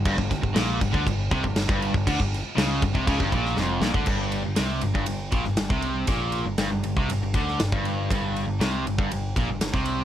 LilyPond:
<<
  \new Staff \with { instrumentName = "Overdriven electric guitar" } { \clef bass \time 4/4 \key c \major \tempo 4 = 119 g,16 g,16 g,16 g,16 bes,8 g,16 d16 g,8 c16 g,8 g,8 g,16 | d16 g,8 r16 cis8 g,16 c16 cis16 g,16 bes,8 f,8 bes,16 d16 | g,8. g,16 c8 g,16 g,16 g,8 bes,16 g,16 g,16 c8. | bes,8. g,16 g,16 g,16 g,16 c16 g,16 g,16 d8 g,16 g,8. |
g,8. g,16 c8 g,16 g,16 g,8 bes,16 g,16 g,16 c8. | }
  \new Staff \with { instrumentName = "Picked electric bass" } { \clef bass \time 4/4 \key c \major g,,16 g,,16 g,,16 g,,16 bes,,8 g,,16 d,16 g,,8 c,16 g,,8 g,,8 g,,16 | d,16 g,,8 r16 cis,8 g,,16 c,16 cis,16 g,,16 bes,,8 f,,8 bes,,16 d,16 | g,,8. g,,16 c,8 g,,16 g,,16 g,,8 bes,,16 g,,16 g,,16 c,8. | bes,,8. g,,16 g,,16 g,,16 g,,16 c,16 g,,16 g,,16 d,8 g,,16 g,,8. |
g,,8. g,,16 c,8 g,,16 g,,16 g,,8 bes,,16 g,,16 g,,16 c,8. | }
  \new DrumStaff \with { instrumentName = "Drums" } \drummode { \time 4/4 <cymc bd>16 bd16 <cymc bd sn>16 bd16 <cymc sn>8 <cymc bd>16 bd16 <cymc bd>8 <cymc bd>16 bd16 <cymc sn>16 bd16 cymc16 bd16 | <cymc bd>16 bd16 <cymc sn>8 <cymc sn>8 <cymc bd>16 bd16 <cymc bd>16 bd16 <cymc bd>16 sn16 sn8 sn16 bd16 | <cymc bd>8 cymr8 <cymr sn>8 cymr16 bd16 cymr8 <bd cymr>16 sn16 <cymr sn>16 bd16 cymr8 | <bd cymr>8 cymr8 <cymr sn>8 cymr16 bd16 cymr8 <bd cymr>16 sn16 <cymr sn>16 bd16 cymr8 |
<bd cymr>8 cymr8 <cymr sn>8 cymr16 bd16 cymr8 <bd cymr>8 <cymr sn>16 <bd sn>16 cymr8 | }
>>